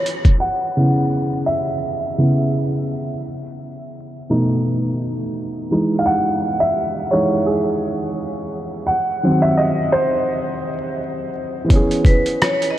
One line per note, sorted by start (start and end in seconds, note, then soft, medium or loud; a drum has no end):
0.00 0.38 E3 medium
0.00 0.36 B3 medium
0.00 0.38 C#4 medium
0.00 0.40 G#4 medium
0.06 closed hi-hat medium
0.25 kick medium
0.25 closed hi-hat medium
0.40 1.50 F#5 medium
0.77 2.16 C#3 soft
0.77 2.17 B3 soft
0.77 2.17 E4 soft
1.46 2.84 E5 medium
2.18 2.49 C#3 soft
2.18 2.50 B3 soft
2.18 2.50 E4 soft
4.29 4.78 B2 soft
4.29 4.78 A3 soft
4.29 4.78 D#4 medium
5.71 6.19 E3 soft
5.71 6.19 G#3 soft
5.71 6.20 D#4 medium
5.99 6.05 F5 medium
6.06 6.62 F#5 loud
6.60 7.13 E5 loud
7.11 7.43 E3 soft
7.11 7.44 G#3 soft
7.11 7.44 D#4 medium
7.11 7.48 C#5 medium
7.46 8.48 G#4 medium
8.87 9.44 F#5 loud
9.23 9.72 D#3 soft
9.23 9.72 F#3 soft
9.23 9.72 C4 medium
9.42 9.47 E5 medium
9.57 9.94 D#5 medium
9.92 11.30 C5 medium
11.64 12.79 E3 medium
11.64 12.79 B3 medium
11.70 12.79 C#4 medium
11.70 kick loud
11.70 closed hi-hat medium
11.75 12.79 G#4 medium
11.91 closed hi-hat soft
12.05 12.42 B4 medium
12.05 kick medium
12.05 closed hi-hat medium
12.26 closed hi-hat soft
12.42 12.68 C#5 medium
12.42 cross-stick loud
12.42 closed hi-hat medium
12.62 closed hi-hat medium
12.71 12.76 D#5 medium